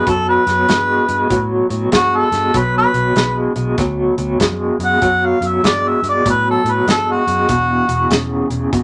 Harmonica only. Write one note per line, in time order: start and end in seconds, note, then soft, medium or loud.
0.00 0.11 B4 medium
0.09 0.28 A4 medium
0.29 1.48 B4 medium
1.95 2.17 F#4 loud
2.16 2.59 A4 medium
2.57 2.76 B4 medium
2.78 3.36 B4 medium
4.85 5.27 F#5 medium
5.26 5.48 F5 medium
5.46 5.68 E5 medium
5.67 5.89 D5 medium
5.88 6.06 E5 medium
6.09 6.27 D5 medium
6.30 6.48 B4 medium
6.51 6.72 A4 medium
6.71 6.89 B4 medium
6.91 7.13 A4 medium
7.11 8.30 F#4 medium